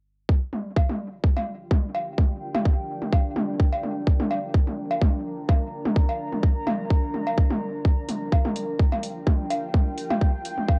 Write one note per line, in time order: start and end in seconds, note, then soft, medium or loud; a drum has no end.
0.29 10.79 F3 medium
0.29 10.79 D4 medium
0.29 4.10 F4 medium
0.29 kick loud
0.51 10.79 A#4 medium
0.51 high tom soft
0.59 4.40 G5 medium
0.76 kick loud
0.76 cowbell medium
0.89 high tom medium
1.24 kick loud
1.36 high tom soft
1.36 cowbell medium
1.71 kick loud
1.71 high tom medium
1.95 cowbell medium
2.18 kick loud
2.18 high tom soft
2.55 high tom medium
2.55 cowbell medium
2.65 kick loud
3.02 high tom soft
3.13 kick loud
3.13 cowbell medium
3.36 high tom medium
3.60 kick loud
3.73 cowbell medium
3.83 high tom soft
4.07 7.88 D4 medium
4.07 kick loud
4.20 high tom medium
4.31 cowbell medium
4.38 8.18 A#5 loud
4.54 kick loud
4.67 high tom soft
4.91 cowbell medium
5.02 kick loud
5.02 high tom medium
5.49 kick loud
5.49 high tom soft
5.49 cowbell medium
5.85 high tom medium
5.96 kick loud
6.09 cowbell medium
6.33 high tom soft
6.43 kick loud
6.67 high tom medium
6.67 cowbell medium
6.90 kick loud
7.14 high tom soft
7.27 cowbell medium
7.38 kick loud
7.51 high tom medium
7.85 10.79 F4 medium
7.85 kick loud
8.09 open hi-hat medium
8.09 high tom soft
8.15 10.79 G5 loud
8.32 kick loud
8.32 cowbell medium
8.45 high tom medium
8.56 open hi-hat medium
8.79 kick loud
8.92 high tom soft
8.92 cowbell medium
9.03 open hi-hat medium
9.27 kick loud
9.27 high tom medium
9.50 open hi-hat medium
9.50 cowbell medium
9.74 kick loud
9.74 high tom soft
9.98 open hi-hat medium
10.10 high tom medium
10.10 cowbell medium
10.21 kick loud
10.45 open hi-hat medium
10.58 high tom soft
10.68 kick loud
10.68 cowbell medium